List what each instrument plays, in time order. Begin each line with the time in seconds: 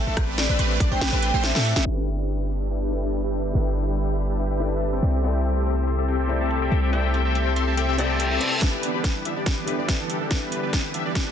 0.07 808-style bass A1, analog polysynth A3 C4 D4 G4 A4, synth pluck A4
0.17 808-style bass A1, synth pluck B4, kick, cross-stick, closed hi-hat
0.38 vibraphone D5, snare, closed hi-hat
0.49 808-style bass A1, analog polysynth A3 C4 D4 G4 B4, synth pluck B4
0.59 808-style bass A1, analog polysynth A3 C4 D4 G4 B4, synth pluck B4, closed hi-hat
0.80 808-style bass A1, analog polysynth A3 D4, synth pluck D5, kick, closed hi-hat
0.91 808-style bass A1, analog polysynth A3 C4 D4 G4 C5, synth pluck C5, vibraphone G5
1.01 808-style bass A1, analog polysynth A3 C4 D4 G4 B4, synth pluck B4, snare, closed hi-hat
1.12 808-style bass A1, analog polysynth A3 C4 D4 G4 B4, synth pluck B4
1.22 vibraphone G5, closed hi-hat
1.34 808-style bass A1, analog polysynth A3 C4 D4 G4 C5, synth pluck C5
1.44 vibraphone E5, snare, closed hi-hat
1.55 808-style bass A2, analog polysynth A3 C4 D4 G4 A4, synth pluck A4, snare
1.65 open hi-hat
1.76 808-style bass A1, analog polysynth A3 C4 D4 G4 A4, synth pluck A4, snare
1.84 808-style bass G1, analog synth pad D3 G3 B3 E4 G4, felt piano G3 D4 E4 A4 B4, analog polysynth D4 G4 B4 E5 G5, downlifter
2.18 analog polysynth D4 G4 B4 E5 G5
2.28 analog polysynth D4 G4 B4 E5 G5
2.49 analog polysynth D4 G4 B4 E5 B5
2.60 analog polysynth D4 G4 B4 E5 A5
2.70 analog polysynth D4 G4 B4 E5 G5
2.82 analog polysynth D4 G4 B4 E5 G5
2.90 felt piano G3 D4 E4 A4
2.94 felt piano B4
3.03 analog polysynth D4 G4 B4 E5 A5
3.13 closed hi-hat
3.24 analog polysynth D4 G4 B4 E5 G5
3.45 analog polysynth D4 G4 B4 E5 G5
3.53 808-style bass G1, felt piano G3 D4 E4 A4 B4, analog polysynth D4 G4 B4 E5 G5, closed hi-hat
3.76 closed hi-hat
3.87 analog polysynth D4 G4 B4 E5 G5
3.97 analog polysynth D4 G4 B4 E5 G5, closed hi-hat
4.18 analog polysynth D4 G4 B4 E5 B5, closed hi-hat
4.30 analog polysynth D4 G4 B4 E5 A5
4.39 analog polysynth D4 G4 B4 E5 G5, closed hi-hat
4.50 analog polysynth D4 G4 B4 E5 G5
4.59 felt piano G3 D4 E4 A4 B4, closed hi-hat
4.71 analog polysynth D4 G4 B4 E5 A5
4.82 closed hi-hat
4.93 analog polysynth C4 G4 A4 E5 G5
5.02 808-style bass C2, felt piano C3 C4 E4 A4 D5, analog synth pad C3 G3 A3 G4, closed hi-hat
5.14 analog polysynth C4 G4 A4 E5 G5
5.22 felt piano C3 C4 E4 A4, analog polysynth C4 G4 A4 E5 G5, closed hi-hat
5.26 felt piano D5
5.45 closed hi-hat
5.56 analog polysynth C4 G4 A4 E5 G5
5.66 analog polysynth C4 G4 A4 E5 G5, closed hi-hat
5.87 analog polysynth C4 G4 A4 E5 C6, closed hi-hat
5.98 analog polysynth C4 G4 A4 E5 A5
6.08 analog polysynth C4 G4 A4 E5 G5, closed hi-hat
6.19 analog polysynth C4 G4 A4 E5 G5
6.27 felt piano C3 C4 E4 A4, closed hi-hat
6.31 felt piano D5
6.41 analog polysynth C4 G4 A4 E5 A5
6.51 closed hi-hat
6.62 analog polysynth C4 G4 A4 E5 G5
6.71 808-style bass C2, analog synth pad A4, closed hi-hat
6.83 analog polysynth C4 G4 A4 E5 G5
6.91 felt piano C3 C4 E4 A4 D5, analog polysynth C4 G4 A4 E5 G5, closed hi-hat
7.14 closed hi-hat
7.25 analog polysynth C4 G4 A4 E5 G5
7.35 analog polysynth C4 G4 A4 E5 G5, closed hi-hat
7.56 analog polysynth C4 G4 A4 E5 C6, closed hi-hat
7.67 analog polysynth C4 G4 A4 E5 A5
7.77 analog polysynth C4 G4 A4 E5 G5, closed hi-hat, reverse cymbal
7.88 analog polysynth C4 G4 A4 E5 G5
7.98 felt piano C3 C4 E4 A4 D5, analog polysynth C4 G4 A4 E5 G5, closed hi-hat
8.20 closed hi-hat
8.31 analog polysynth C4 G4 A4 E5 A5
8.40 felt piano C3 C4 E4 A4 D5, closed hi-hat
8.52 analog polysynth C4 G4 A4 E5 A5
8.60 808-style bass G1, analog synth pad D3 G3 B3 E4, analog polysynth E3 B3 D4, felt piano G3 D4 E4 A4, kick, snare, closed hi-hat
8.64 felt piano B4
8.83 closed hi-hat
8.94 808-style bass G1, analog polysynth E3 B3 D4 G4 B4
9.04 kick, snare, closed hi-hat
9.25 808-style bass G1, analog polysynth E3 B3 D4 G4 E5, closed hi-hat
9.36 808-style bass G1, analog polysynth E3 B3 D4 G4 D5
9.46 kick, snare, closed hi-hat
9.57 808-style bass G1, analog polysynth E3 B3 D4 G4 B4
9.65 felt piano G3 D4 E4 A4, closed hi-hat
9.69 felt piano B4
9.79 808-style bass G1, analog polysynth E3 B3 D4 G4 D5
9.89 kick, snare, closed hi-hat
10.00 808-style bass G1, analog polysynth E3 B3 D4 G4 A4
10.10 closed hi-hat
10.21 808-style bass G1, analog polysynth E3 B3 D4 G4 A4
10.29 analog polysynth E3 B3 D4 G4, felt piano G3 D4 E4 A4, kick, snare, closed hi-hat
10.33 felt piano B4
10.52 closed hi-hat
10.63 808-style bass G1, analog polysynth E3 B3 D4 G4 B4
10.73 analog polysynth E3 B3 D4 G4 B4, kick, snare, closed hi-hat
10.94 808-style bass G1, analog polysynth E3 B3 D4 G4 E5, closed hi-hat
11.06 808-style bass G1, analog polysynth E3 B3 D4 G4 D5
11.15 kick, snare, closed hi-hat
11.26 808-style bass G1, analog polysynth E3 B3 D4 G4 B4